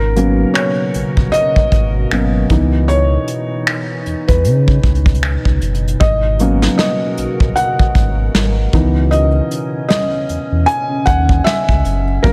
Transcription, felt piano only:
0, 0, Header, 1, 2, 480
1, 0, Start_track
1, 0, Tempo, 779221
1, 1779, Time_signature, 4, 2, 24, 8
1, 7593, End_track
2, 0, Start_track
2, 0, Title_t, "Felt piano"
2, 0, Program_c, 0, 0
2, 0, Control_c, 0, 64, 127
2, 0, Note_on_c, 0, 70, 96
2, 99, Note_on_c, 0, 54, 57
2, 101, Note_on_c, 0, 58, 52
2, 103, Note_on_c, 0, 59, 55
2, 107, Note_on_c, 0, 61, 62
2, 331, Note_on_c, 0, 73, 95
2, 350, Note_off_c, 0, 70, 0
2, 433, Note_off_c, 0, 54, 0
2, 434, Note_off_c, 0, 58, 0
2, 435, Note_off_c, 0, 59, 0
2, 437, Note_off_c, 0, 61, 0
2, 812, Note_on_c, 0, 75, 108
2, 830, Note_off_c, 0, 73, 0
2, 1302, Note_on_c, 0, 54, 50
2, 1304, Note_on_c, 0, 58, 45
2, 1305, Note_on_c, 0, 59, 45
2, 1305, Note_on_c, 0, 61, 57
2, 1517, Note_off_c, 0, 54, 0
2, 1518, Note_off_c, 0, 58, 0
2, 1518, Note_off_c, 0, 59, 0
2, 1519, Note_off_c, 0, 61, 0
2, 1542, Note_on_c, 0, 52, 59
2, 1544, Note_on_c, 0, 59, 53
2, 1548, Control_c, 0, 64, 0
2, 1549, Note_on_c, 0, 63, 62
2, 1663, Control_c, 0, 64, 127
2, 1775, Note_on_c, 0, 73, 101
2, 1805, Note_off_c, 0, 75, 0
2, 2236, Note_off_c, 0, 52, 0
2, 2237, Note_off_c, 0, 59, 0
2, 2239, Note_off_c, 0, 63, 0
2, 2634, Note_on_c, 0, 71, 80
2, 2662, Note_off_c, 0, 73, 0
2, 3432, Note_off_c, 0, 71, 0
2, 3696, Note_on_c, 0, 75, 93
2, 3708, Control_c, 0, 64, 0
2, 3815, Control_c, 0, 64, 127
2, 3942, Note_on_c, 0, 54, 57
2, 3944, Note_on_c, 0, 58, 51
2, 3946, Note_on_c, 0, 59, 52
2, 3949, Note_on_c, 0, 61, 64
2, 4153, Note_off_c, 0, 75, 0
2, 4174, Note_on_c, 0, 75, 87
2, 4636, Note_off_c, 0, 54, 0
2, 4637, Note_off_c, 0, 58, 0
2, 4638, Note_off_c, 0, 59, 0
2, 4640, Note_off_c, 0, 61, 0
2, 4654, Note_on_c, 0, 78, 97
2, 4671, Note_off_c, 0, 75, 0
2, 5380, Note_on_c, 0, 52, 57
2, 5383, Note_on_c, 0, 59, 52
2, 5386, Note_on_c, 0, 63, 63
2, 5388, Control_c, 0, 64, 0
2, 5495, Control_c, 0, 64, 127
2, 5592, Note_off_c, 0, 78, 0
2, 5612, Note_on_c, 0, 75, 93
2, 5713, Note_off_c, 0, 52, 0
2, 5715, Note_off_c, 0, 59, 0
2, 5717, Note_off_c, 0, 63, 0
2, 6080, Note_off_c, 0, 75, 0
2, 6089, Note_on_c, 0, 75, 96
2, 6568, Note_on_c, 0, 80, 107
2, 6589, Note_off_c, 0, 75, 0
2, 6811, Note_on_c, 0, 78, 104
2, 6821, Note_off_c, 0, 80, 0
2, 7038, Note_off_c, 0, 78, 0
2, 7049, Note_on_c, 0, 76, 98
2, 7409, Note_off_c, 0, 76, 0
2, 7531, Note_on_c, 0, 70, 96
2, 7540, Note_on_c, 0, 54, 57
2, 7543, Note_on_c, 0, 58, 54
2, 7545, Note_on_c, 0, 59, 52
2, 7548, Control_c, 0, 64, 0
2, 7548, Note_on_c, 0, 61, 67
2, 7593, Note_off_c, 0, 54, 0
2, 7593, Note_off_c, 0, 58, 0
2, 7593, Note_off_c, 0, 59, 0
2, 7593, Note_off_c, 0, 61, 0
2, 7593, Note_off_c, 0, 70, 0
2, 7593, End_track
0, 0, End_of_file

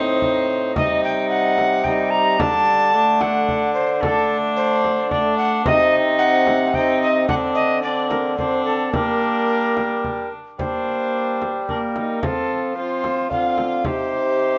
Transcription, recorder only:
0, 0, Header, 1, 2, 480
1, 0, Start_track
1, 0, Key_signature, -2, "minor"
1, 0, Tempo, 542986
1, 678, Time_signature, 3, 2, 24, 8
1, 6436, Tempo, 546946
1, 9335, Key_signature, -2, "minor"
1, 12845, End_track
2, 0, Start_track
2, 0, Title_t, "Recorder"
2, 0, Program_c, 0, 74
2, 0, Note_on_c, 0, 72, 92
2, 660, Note_off_c, 0, 72, 0
2, 677, Note_on_c, 0, 75, 115
2, 913, Note_off_c, 0, 75, 0
2, 919, Note_on_c, 0, 79, 93
2, 1139, Note_off_c, 0, 79, 0
2, 1145, Note_on_c, 0, 78, 107
2, 1627, Note_on_c, 0, 79, 92
2, 1640, Note_off_c, 0, 78, 0
2, 1860, Note_on_c, 0, 82, 110
2, 1873, Note_off_c, 0, 79, 0
2, 2121, Note_on_c, 0, 81, 127
2, 2134, Note_off_c, 0, 82, 0
2, 2840, Note_on_c, 0, 78, 109
2, 2853, Note_off_c, 0, 81, 0
2, 3298, Note_off_c, 0, 78, 0
2, 3303, Note_on_c, 0, 72, 105
2, 3545, Note_on_c, 0, 69, 126
2, 3559, Note_off_c, 0, 72, 0
2, 3863, Note_off_c, 0, 69, 0
2, 4033, Note_on_c, 0, 72, 114
2, 4520, Note_on_c, 0, 74, 92
2, 4533, Note_off_c, 0, 72, 0
2, 4748, Note_off_c, 0, 74, 0
2, 4753, Note_on_c, 0, 78, 112
2, 4989, Note_off_c, 0, 78, 0
2, 4999, Note_on_c, 0, 75, 127
2, 5261, Note_off_c, 0, 75, 0
2, 5466, Note_on_c, 0, 78, 120
2, 5966, Note_on_c, 0, 79, 103
2, 5979, Note_off_c, 0, 78, 0
2, 6200, Note_off_c, 0, 79, 0
2, 6207, Note_on_c, 0, 75, 104
2, 6430, Note_off_c, 0, 75, 0
2, 6435, Note_on_c, 0, 78, 125
2, 6489, Note_off_c, 0, 78, 0
2, 6670, Note_on_c, 0, 75, 106
2, 6908, Note_off_c, 0, 75, 0
2, 6918, Note_on_c, 0, 74, 99
2, 7146, Note_off_c, 0, 74, 0
2, 7152, Note_on_c, 0, 70, 79
2, 7388, Note_off_c, 0, 70, 0
2, 7393, Note_on_c, 0, 72, 86
2, 7631, Note_off_c, 0, 72, 0
2, 7636, Note_on_c, 0, 69, 91
2, 7885, Note_on_c, 0, 70, 110
2, 7898, Note_off_c, 0, 69, 0
2, 9096, Note_off_c, 0, 70, 0
2, 9339, Note_on_c, 0, 72, 102
2, 10300, Note_on_c, 0, 70, 75
2, 10313, Note_off_c, 0, 72, 0
2, 10787, Note_on_c, 0, 69, 98
2, 10801, Note_off_c, 0, 70, 0
2, 11241, Note_on_c, 0, 72, 83
2, 11254, Note_off_c, 0, 69, 0
2, 11720, Note_off_c, 0, 72, 0
2, 11724, Note_on_c, 0, 77, 85
2, 12204, Note_on_c, 0, 72, 108
2, 12218, Note_off_c, 0, 77, 0
2, 12845, Note_off_c, 0, 72, 0
2, 12845, End_track
0, 0, End_of_file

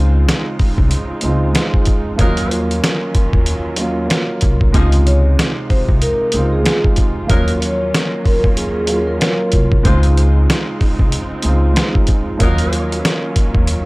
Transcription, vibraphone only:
0, 0, Header, 1, 2, 480
1, 0, Start_track
1, 0, Key_signature, -5, "major"
1, 0, Tempo, 638298
1, 1648, Time_signature, 4, 2, 24, 8
1, 10420, End_track
2, 0, Start_track
2, 0, Title_t, "Vibraphone"
2, 0, Program_c, 0, 11
2, 3807, Note_on_c, 0, 73, 76
2, 4023, Note_off_c, 0, 73, 0
2, 4283, Note_on_c, 0, 72, 74
2, 4409, Note_off_c, 0, 72, 0
2, 4527, Note_on_c, 0, 70, 93
2, 4883, Note_off_c, 0, 70, 0
2, 4907, Note_on_c, 0, 68, 86
2, 5122, Note_off_c, 0, 68, 0
2, 5718, Note_on_c, 0, 73, 82
2, 5939, Note_off_c, 0, 73, 0
2, 6202, Note_on_c, 0, 70, 83
2, 6329, Note_off_c, 0, 70, 0
2, 6446, Note_on_c, 0, 68, 81
2, 6802, Note_off_c, 0, 68, 0
2, 6824, Note_on_c, 0, 70, 82
2, 7376, Note_off_c, 0, 70, 0
2, 10420, End_track
0, 0, End_of_file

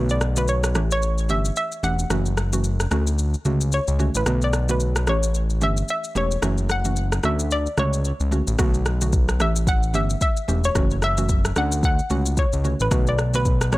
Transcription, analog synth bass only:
0, 0, Header, 1, 2, 480
1, 0, Start_track
1, 0, Key_signature, 2, "minor"
1, 0, Tempo, 540541
1, 1867, Time_signature, 4, 2, 24, 8
1, 12236, End_track
2, 0, Start_track
2, 0, Title_t, "Analog synth bass"
2, 0, Program_c, 0, 38
2, 0, Note_on_c, 0, 35, 111
2, 668, Note_on_c, 0, 33, 98
2, 681, Note_off_c, 0, 35, 0
2, 1148, Note_on_c, 0, 31, 99
2, 1161, Note_off_c, 0, 33, 0
2, 1343, Note_off_c, 0, 31, 0
2, 1626, Note_on_c, 0, 28, 84
2, 1822, Note_off_c, 0, 28, 0
2, 1864, Note_on_c, 0, 30, 108
2, 2550, Note_off_c, 0, 30, 0
2, 2587, Note_on_c, 0, 38, 101
2, 2978, Note_off_c, 0, 38, 0
2, 3065, Note_on_c, 0, 37, 90
2, 3375, Note_off_c, 0, 37, 0
2, 3444, Note_on_c, 0, 37, 87
2, 3640, Note_off_c, 0, 37, 0
2, 3685, Note_on_c, 0, 33, 87
2, 3767, Note_off_c, 0, 33, 0
2, 3786, Note_on_c, 0, 35, 110
2, 4506, Note_on_c, 0, 33, 102
2, 4519, Note_off_c, 0, 35, 0
2, 4985, Note_on_c, 0, 31, 96
2, 4999, Note_off_c, 0, 33, 0
2, 5182, Note_off_c, 0, 31, 0
2, 5466, Note_on_c, 0, 28, 85
2, 5662, Note_off_c, 0, 28, 0
2, 5705, Note_on_c, 0, 30, 107
2, 6390, Note_off_c, 0, 30, 0
2, 6426, Note_on_c, 0, 38, 98
2, 6817, Note_off_c, 0, 38, 0
2, 6905, Note_on_c, 0, 37, 87
2, 7215, Note_off_c, 0, 37, 0
2, 7284, Note_on_c, 0, 37, 87
2, 7480, Note_off_c, 0, 37, 0
2, 7526, Note_on_c, 0, 33, 90
2, 7608, Note_off_c, 0, 33, 0
2, 7627, Note_on_c, 0, 35, 109
2, 8347, Note_on_c, 0, 33, 103
2, 8360, Note_off_c, 0, 35, 0
2, 8825, Note_on_c, 0, 31, 98
2, 8838, Note_off_c, 0, 33, 0
2, 9021, Note_off_c, 0, 31, 0
2, 9309, Note_on_c, 0, 28, 83
2, 9503, Note_off_c, 0, 28, 0
2, 9548, Note_on_c, 0, 30, 106
2, 10232, Note_off_c, 0, 30, 0
2, 10268, Note_on_c, 0, 38, 101
2, 10659, Note_off_c, 0, 38, 0
2, 10748, Note_on_c, 0, 37, 87
2, 11057, Note_off_c, 0, 37, 0
2, 11128, Note_on_c, 0, 37, 84
2, 11323, Note_off_c, 0, 37, 0
2, 11368, Note_on_c, 0, 33, 86
2, 11449, Note_off_c, 0, 33, 0
2, 11468, Note_on_c, 0, 35, 108
2, 12186, Note_on_c, 0, 33, 99
2, 12199, Note_off_c, 0, 35, 0
2, 12236, Note_off_c, 0, 33, 0
2, 12236, End_track
0, 0, End_of_file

